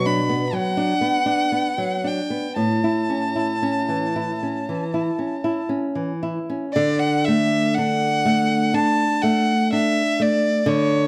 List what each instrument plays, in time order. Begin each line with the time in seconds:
Already playing: nylon-string guitar B2 F#3
0.06 nylon-string guitar D4, violin B5
0.29 nylon-string guitar B3
0.53 nylon-string guitar F#3, violin F#5
0.77 nylon-string guitar D4
1.01 nylon-string guitar B3
1.26 nylon-string guitar D4
1.52 nylon-string guitar B3
1.78 nylon-string guitar F#3
2.04 nylon-string guitar D4, violin G5
2.30 nylon-string guitar B3
2.56 nylon-string guitar A2, violin A5
2.84 nylon-string guitar E4
3.09 nylon-string guitar C#4
3.36 nylon-string guitar E4
3.62 nylon-string guitar C#4
3.89 nylon-string guitar E3
4.16 nylon-string guitar E4
4.43 nylon-string guitar C#4
4.69 nylon-string guitar E3
4.94 nylon-string guitar E4
5.19 nylon-string guitar C#4
5.44 nylon-string guitar E4
5.69 nylon-string guitar C#4
5.95 nylon-string guitar E3
6.23 nylon-string guitar E4
6.50 nylon-string guitar C#4
6.74 nylon-string guitar D3, violin D5
6.99 violin F#5
7.25 nylon-string guitar A3, violin E5
7.75 nylon-string guitar D4, violin F#5
8.25 nylon-string guitar A3
8.74 nylon-string guitar D4, violin A5
9.22 nylon-string guitar A3, violin F#5
9.73 nylon-string guitar D4, violin E5
10.20 nylon-string guitar A3, violin D5
10.66 nylon-string guitar D3, violin C#5